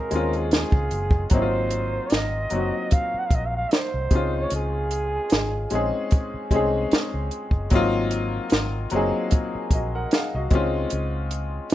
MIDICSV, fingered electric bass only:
0, 0, Header, 1, 3, 480
1, 0, Start_track
1, 0, Key_signature, -5, "major"
1, 0, Tempo, 800000
1, 787, Time_signature, 4, 2, 24, 8
1, 7048, End_track
2, 0, Start_track
2, 0, Title_t, "Fingered electric bass"
2, 0, Program_c, 0, 33
2, 72, Note_on_c, 0, 39, 94
2, 379, Note_off_c, 0, 39, 0
2, 438, Note_on_c, 0, 37, 93
2, 528, Note_off_c, 0, 37, 0
2, 550, Note_on_c, 0, 30, 93
2, 748, Note_off_c, 0, 30, 0
2, 791, Note_on_c, 0, 32, 91
2, 1187, Note_off_c, 0, 32, 0
2, 1272, Note_on_c, 0, 32, 73
2, 1469, Note_off_c, 0, 32, 0
2, 1511, Note_on_c, 0, 30, 84
2, 1620, Note_off_c, 0, 30, 0
2, 1988, Note_on_c, 0, 34, 80
2, 2187, Note_off_c, 0, 34, 0
2, 2364, Note_on_c, 0, 36, 70
2, 2451, Note_off_c, 0, 36, 0
2, 2470, Note_on_c, 0, 37, 101
2, 2668, Note_off_c, 0, 37, 0
2, 2710, Note_on_c, 0, 37, 99
2, 3106, Note_off_c, 0, 37, 0
2, 3193, Note_on_c, 0, 32, 78
2, 3389, Note_off_c, 0, 32, 0
2, 3432, Note_on_c, 0, 34, 93
2, 3540, Note_off_c, 0, 34, 0
2, 3909, Note_on_c, 0, 36, 84
2, 4107, Note_off_c, 0, 36, 0
2, 4283, Note_on_c, 0, 37, 77
2, 4371, Note_off_c, 0, 37, 0
2, 4510, Note_on_c, 0, 30, 81
2, 4603, Note_off_c, 0, 30, 0
2, 4633, Note_on_c, 0, 32, 99
2, 5029, Note_off_c, 0, 32, 0
2, 5112, Note_on_c, 0, 32, 82
2, 5309, Note_off_c, 0, 32, 0
2, 5354, Note_on_c, 0, 30, 86
2, 5461, Note_off_c, 0, 30, 0
2, 5828, Note_on_c, 0, 34, 79
2, 6026, Note_off_c, 0, 34, 0
2, 6207, Note_on_c, 0, 36, 80
2, 6293, Note_off_c, 0, 36, 0
2, 6310, Note_on_c, 0, 37, 87
2, 6508, Note_off_c, 0, 37, 0
2, 6554, Note_on_c, 0, 37, 99
2, 6949, Note_off_c, 0, 37, 0
2, 7048, End_track
3, 0, Start_track
3, 0, Title_t, "Muted fingered electric bass strokes"
3, 1885, Note_on_c, 9, 29, 40
3, 1945, Note_off_c, 9, 29, 0
3, 3804, Note_on_c, 9, 29, 51
3, 3864, Note_off_c, 9, 29, 0
3, 4153, Note_on_c, 9, 29, 47
3, 4213, Note_off_c, 9, 29, 0
3, 5729, Note_on_c, 9, 29, 46
3, 5789, Note_off_c, 9, 29, 0
3, 7048, End_track
0, 0, End_of_file